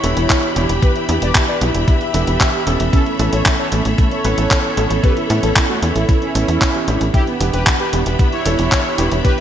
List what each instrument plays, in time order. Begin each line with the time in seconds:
Already playing: string section D4 G4 E5 B5, analog polysynth E4 C#5
0.03 analog synth bass E1, electric grand piano E3 B3 D4 A4, closed hi-hat
0.17 analog synth bass E1, closed hi-hat
0.30 kick, clap, closed hi-hat
0.43 closed hi-hat
0.56 analog synth bass E1, electric grand piano E3 B3 D4 G4, closed hi-hat
0.69 analog synth bass E1, closed hi-hat
0.82 analog polysynth G4 B4, kick, closed hi-hat
0.96 analog polysynth E4, closed hi-hat
1.09 analog synth bass E2, electric grand piano E3 B3 D4 G4, analog polysynth E4, closed hi-hat
1.22 analog synth bass E1, analog polysynth B4 D5, closed hi-hat
1.35 analog polysynth E4, kick, clap, closed hi-hat
1.48 analog polysynth B4 D5, closed hi-hat
1.61 analog synth bass B1, electric grand piano E3 B3 D4 G4, analog polysynth E4, closed hi-hat
1.75 analog synth bass E1, analog polysynth E4, closed hi-hat
1.88 analog polysynth E4, kick, closed hi-hat
2.01 analog polysynth G4 E5, closed hi-hat
2.14 analog synth bass E1, electric grand piano E3 B3 D4 A4, closed hi-hat
2.27 analog synth bass E1, closed hi-hat
2.40 kick, clap, closed hi-hat
2.54 closed hi-hat
2.67 analog synth bass E1, electric grand piano E3 B3 C#4 A4, closed hi-hat
2.80 analog synth bass E1, closed hi-hat
2.93 analog polysynth C#4 A4, string section A4 C#5, kick, closed hi-hat
3.06 analog polysynth A3, closed hi-hat
3.19 analog synth bass A1, electric grand piano E3 B3 C#4 A4, analog polysynth A3, closed hi-hat
3.33 analog synth bass A1, analog polysynth A4 C#5, closed hi-hat
3.46 analog polysynth A3, kick, clap, closed hi-hat
3.59 analog polysynth A4 C#5, closed hi-hat
3.72 analog synth bass A1, electric grand piano E3 B3 C#4 A4, analog polysynth A3, closed hi-hat
3.85 analog synth bass A1, analog polysynth A3, closed hi-hat
3.98 analog polysynth A3, kick, closed hi-hat
4.11 analog polysynth A4 C#5, closed hi-hat
4.25 analog synth bass A1, electric grand piano E3 B3 C#4 B4, closed hi-hat
4.38 analog synth bass A1, closed hi-hat
4.51 kick, clap, closed hi-hat
4.64 closed hi-hat
4.77 analog synth bass A1, electric grand piano E3 B3 C#4 A4, closed hi-hat
4.91 analog synth bass A1, closed hi-hat
5.04 analog polysynth G4 B4, kick, closed hi-hat
5.17 analog polysynth E4, closed hi-hat
5.30 analog synth bass A2, electric grand piano E3 B3 C#4 A4, analog polysynth E4, closed hi-hat
5.43 analog synth bass A1, analog polysynth C#4 A4, closed hi-hat
5.56 analog polysynth E4, kick, clap, closed hi-hat
5.69 analog polysynth A3 F#4, closed hi-hat
5.83 analog synth bass E2, electric grand piano E3 B3 C#4 A4, analog polysynth E4, closed hi-hat
5.96 analog synth bass A1, analog polysynth E4, closed hi-hat
6.09 analog polysynth E4, kick, closed hi-hat
6.22 analog polysynth C#4 E4, closed hi-hat
6.35 analog synth bass A1, electric grand piano E3 B3 C#4 A4, closed hi-hat
6.48 analog synth bass E2, closed hi-hat
6.61 kick, clap, closed hi-hat
6.75 electric grand piano E3 B3 C#4 G4, closed hi-hat
6.88 analog synth bass A1, electric grand piano E3 B3 D4 G4, closed hi-hat
7.01 analog synth bass A1, closed hi-hat
7.14 string section D4 G4 E5 B5, analog polysynth E4 G4, kick, closed hi-hat
7.27 analog polysynth B3, closed hi-hat
7.40 analog synth bass E1, electric grand piano E3 B3 D4 G4, analog polysynth B3, closed hi-hat
7.54 analog synth bass E1, analog polysynth G4 B4, closed hi-hat
7.67 analog polysynth B3, kick, clap, closed hi-hat
7.80 analog polysynth G4 B4, closed hi-hat
7.93 analog synth bass E1, electric grand piano E3 B3 D4 G4, analog polysynth B3, closed hi-hat
8.06 analog synth bass E1, analog polysynth B3, closed hi-hat
8.19 analog polysynth B3, kick, closed hi-hat
8.32 analog polysynth E4 C#5, closed hi-hat
8.46 analog synth bass E1, electric grand piano E3 B3 D4 A4, closed hi-hat
8.59 analog synth bass E1, closed hi-hat
8.72 kick, clap, closed hi-hat
8.85 closed hi-hat
8.98 analog synth bass E1, electric grand piano E3 B3 D4 G4, closed hi-hat
9.12 analog synth bass E1, closed hi-hat
9.25 analog polysynth G4 B4, kick, closed hi-hat